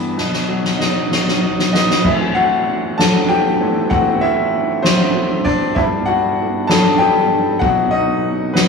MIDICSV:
0, 0, Header, 1, 3, 480
1, 0, Start_track
1, 0, Tempo, 620476
1, 135, Time_signature, 6, 3, 24, 8
1, 6716, End_track
2, 0, Start_track
2, 0, Title_t, "Grand piano"
2, 0, Program_c, 0, 0
2, 0, Control_c, 0, 64, 127
2, 0, Note_on_c, 0, 43, 58
2, 0, Note_on_c, 0, 50, 43
2, 0, Note_on_c, 0, 52, 50
2, 0, Note_on_c, 0, 55, 46
2, 0, Note_on_c, 0, 59, 53
2, 104, Note_off_c, 0, 43, 0
2, 110, Note_off_c, 0, 55, 0
2, 118, Note_off_c, 0, 52, 0
2, 127, Note_off_c, 0, 59, 0
2, 134, Note_on_c, 0, 47, 59
2, 144, Control_c, 0, 64, 0
2, 145, Note_off_c, 0, 50, 0
2, 297, Control_c, 0, 64, 127
2, 377, Note_on_c, 0, 54, 47
2, 609, Note_on_c, 0, 63, 51
2, 858, Note_on_c, 0, 66, 53
2, 1091, Note_off_c, 0, 63, 0
2, 1103, Note_on_c, 0, 63, 50
2, 1316, Note_off_c, 0, 54, 0
2, 1333, Note_off_c, 0, 63, 0
2, 1338, Note_on_c, 0, 75, 87
2, 1339, Note_on_c, 0, 71, 61
2, 1345, Note_on_c, 0, 63, 68
2, 1554, Note_off_c, 0, 47, 0
2, 1562, Note_off_c, 0, 66, 0
2, 1568, Note_off_c, 0, 63, 0
2, 1575, Note_off_c, 0, 71, 0
2, 1580, Note_on_c, 0, 45, 49
2, 1580, Note_on_c, 0, 76, 86
2, 1584, Note_on_c, 0, 52, 40
2, 1589, Note_off_c, 0, 75, 0
2, 1589, Note_on_c, 0, 60, 53
2, 1591, Note_on_c, 0, 64, 63
2, 1595, Control_c, 0, 64, 0
2, 1635, Note_off_c, 0, 76, 0
2, 1644, Note_off_c, 0, 64, 0
2, 1743, Control_c, 0, 64, 127
2, 1816, Note_on_c, 0, 78, 93
2, 1825, Note_on_c, 0, 66, 64
2, 2275, Note_off_c, 0, 66, 0
2, 2303, Note_on_c, 0, 81, 91
2, 2313, Note_on_c, 0, 69, 69
2, 2317, Note_off_c, 0, 78, 0
2, 2534, Note_off_c, 0, 69, 0
2, 2542, Note_on_c, 0, 79, 104
2, 2552, Note_on_c, 0, 67, 79
2, 2553, Note_off_c, 0, 81, 0
2, 2776, Note_off_c, 0, 45, 0
2, 2778, Note_off_c, 0, 52, 0
2, 2781, Note_off_c, 0, 60, 0
2, 2787, Note_on_c, 0, 45, 48
2, 2790, Note_on_c, 0, 52, 44
2, 2793, Note_on_c, 0, 60, 52
2, 2997, Note_off_c, 0, 67, 0
2, 3002, Note_off_c, 0, 45, 0
2, 3004, Note_off_c, 0, 52, 0
2, 3005, Note_off_c, 0, 60, 0
2, 3016, Note_on_c, 0, 78, 91
2, 3020, Note_on_c, 0, 45, 49
2, 3020, Note_on_c, 0, 52, 44
2, 3027, Note_on_c, 0, 60, 56
2, 3027, Note_on_c, 0, 66, 72
2, 3037, Note_off_c, 0, 79, 0
2, 3243, Note_off_c, 0, 78, 0
2, 3248, Note_off_c, 0, 66, 0
2, 3258, Note_on_c, 0, 76, 100
2, 3271, Note_on_c, 0, 64, 65
2, 3340, Note_off_c, 0, 45, 0
2, 3340, Note_off_c, 0, 52, 0
2, 3344, Note_off_c, 0, 60, 0
2, 3708, Note_off_c, 0, 76, 0
2, 3715, Note_off_c, 0, 64, 0
2, 3733, Note_on_c, 0, 72, 89
2, 3745, Note_on_c, 0, 60, 66
2, 4190, Note_off_c, 0, 60, 0
2, 4212, Note_on_c, 0, 74, 92
2, 4225, Note_on_c, 0, 62, 68
2, 4230, Note_off_c, 0, 72, 0
2, 4438, Note_off_c, 0, 74, 0
2, 4445, Note_off_c, 0, 62, 0
2, 4448, Note_on_c, 0, 76, 88
2, 4451, Note_on_c, 0, 43, 47
2, 4457, Note_on_c, 0, 55, 46
2, 4463, Note_on_c, 0, 62, 57
2, 4463, Note_on_c, 0, 64, 73
2, 4467, Control_c, 0, 64, 0
2, 4503, Note_off_c, 0, 76, 0
2, 4516, Note_off_c, 0, 64, 0
2, 4585, Control_c, 0, 64, 127
2, 4685, Note_on_c, 0, 78, 91
2, 4700, Note_on_c, 0, 66, 71
2, 4772, Note_off_c, 0, 43, 0
2, 4775, Note_off_c, 0, 55, 0
2, 4778, Note_off_c, 0, 62, 0
2, 5137, Note_off_c, 0, 78, 0
2, 5145, Note_off_c, 0, 66, 0
2, 5163, Note_on_c, 0, 81, 97
2, 5167, Note_on_c, 0, 43, 49
2, 5171, Note_on_c, 0, 55, 45
2, 5174, Note_on_c, 0, 62, 51
2, 5178, Note_on_c, 0, 69, 75
2, 5385, Note_off_c, 0, 43, 0
2, 5387, Note_off_c, 0, 55, 0
2, 5389, Note_off_c, 0, 62, 0
2, 5399, Note_off_c, 0, 69, 0
2, 5400, Note_on_c, 0, 79, 112
2, 5415, Note_off_c, 0, 81, 0
2, 5418, Note_on_c, 0, 67, 78
2, 5855, Note_off_c, 0, 79, 0
2, 5864, Note_off_c, 0, 67, 0
2, 5874, Note_on_c, 0, 78, 90
2, 5885, Note_on_c, 0, 47, 50
2, 5890, Note_on_c, 0, 54, 46
2, 5894, Note_on_c, 0, 66, 71
2, 5903, Control_c, 0, 64, 0
2, 6036, Control_c, 0, 64, 127
2, 6117, Note_off_c, 0, 66, 0
2, 6118, Note_on_c, 0, 75, 88
2, 6131, Note_off_c, 0, 78, 0
2, 6136, Note_on_c, 0, 63, 61
2, 6577, Note_off_c, 0, 75, 0
2, 6586, Note_off_c, 0, 63, 0
2, 6603, Note_on_c, 0, 71, 76
2, 6620, Note_on_c, 0, 59, 57
2, 6716, Note_off_c, 0, 47, 0
2, 6716, Note_off_c, 0, 54, 0
2, 6716, Note_off_c, 0, 59, 0
2, 6716, Note_off_c, 0, 71, 0
2, 6716, End_track
3, 0, Start_track
3, 0, Title_t, "Drums"
3, 136, Note_on_c, 9, 38, 42
3, 214, Note_off_c, 9, 38, 0
3, 256, Note_on_c, 9, 38, 41
3, 334, Note_off_c, 9, 38, 0
3, 500, Note_on_c, 9, 38, 51
3, 577, Note_off_c, 9, 38, 0
3, 621, Note_on_c, 9, 38, 70
3, 698, Note_off_c, 9, 38, 0
3, 864, Note_on_c, 9, 38, 77
3, 941, Note_off_c, 9, 38, 0
3, 989, Note_on_c, 9, 38, 62
3, 1067, Note_off_c, 9, 38, 0
3, 1229, Note_on_c, 9, 38, 67
3, 1306, Note_off_c, 9, 38, 0
3, 1347, Note_on_c, 9, 38, 90
3, 1425, Note_off_c, 9, 38, 0
3, 1473, Note_on_c, 9, 38, 78
3, 1550, Note_off_c, 9, 38, 0
3, 1584, Note_on_c, 9, 36, 81
3, 1587, Note_on_c, 9, 49, 83
3, 1661, Note_off_c, 9, 36, 0
3, 1664, Note_off_c, 9, 49, 0
3, 1824, Note_on_c, 9, 51, 42
3, 1902, Note_off_c, 9, 51, 0
3, 2068, Note_on_c, 9, 51, 53
3, 2145, Note_off_c, 9, 51, 0
3, 2311, Note_on_c, 9, 51, 76
3, 2314, Note_on_c, 9, 38, 110
3, 2388, Note_off_c, 9, 51, 0
3, 2392, Note_off_c, 9, 38, 0
3, 2542, Note_on_c, 9, 51, 41
3, 2619, Note_off_c, 9, 51, 0
3, 2786, Note_on_c, 9, 51, 56
3, 2864, Note_off_c, 9, 51, 0
3, 3025, Note_on_c, 9, 36, 95
3, 3026, Note_on_c, 9, 51, 70
3, 3103, Note_off_c, 9, 36, 0
3, 3104, Note_off_c, 9, 51, 0
3, 3262, Note_on_c, 9, 51, 38
3, 3339, Note_off_c, 9, 51, 0
3, 3504, Note_on_c, 9, 51, 61
3, 3581, Note_off_c, 9, 51, 0
3, 3744, Note_on_c, 9, 51, 73
3, 3747, Note_on_c, 9, 38, 113
3, 3822, Note_off_c, 9, 51, 0
3, 3825, Note_off_c, 9, 38, 0
3, 3975, Note_on_c, 9, 51, 41
3, 4052, Note_off_c, 9, 51, 0
3, 4216, Note_on_c, 9, 51, 57
3, 4219, Note_on_c, 9, 36, 77
3, 4293, Note_off_c, 9, 51, 0
3, 4296, Note_off_c, 9, 36, 0
3, 4457, Note_on_c, 9, 36, 90
3, 4457, Note_on_c, 9, 51, 68
3, 4534, Note_off_c, 9, 51, 0
3, 4535, Note_off_c, 9, 36, 0
3, 4693, Note_on_c, 9, 51, 41
3, 4770, Note_off_c, 9, 51, 0
3, 4929, Note_on_c, 9, 51, 57
3, 5006, Note_off_c, 9, 51, 0
3, 5175, Note_on_c, 9, 51, 74
3, 5179, Note_on_c, 9, 38, 110
3, 5253, Note_off_c, 9, 51, 0
3, 5256, Note_off_c, 9, 38, 0
3, 5404, Note_on_c, 9, 51, 43
3, 5482, Note_off_c, 9, 51, 0
3, 5654, Note_on_c, 9, 51, 54
3, 5731, Note_off_c, 9, 51, 0
3, 5891, Note_on_c, 9, 51, 67
3, 5892, Note_on_c, 9, 36, 97
3, 5968, Note_off_c, 9, 51, 0
3, 5969, Note_off_c, 9, 36, 0
3, 6132, Note_on_c, 9, 51, 40
3, 6209, Note_off_c, 9, 51, 0
3, 6369, Note_on_c, 9, 51, 59
3, 6447, Note_off_c, 9, 51, 0
3, 6614, Note_on_c, 9, 51, 77
3, 6617, Note_on_c, 9, 38, 109
3, 6691, Note_off_c, 9, 51, 0
3, 6694, Note_off_c, 9, 38, 0
3, 6716, End_track
0, 0, End_of_file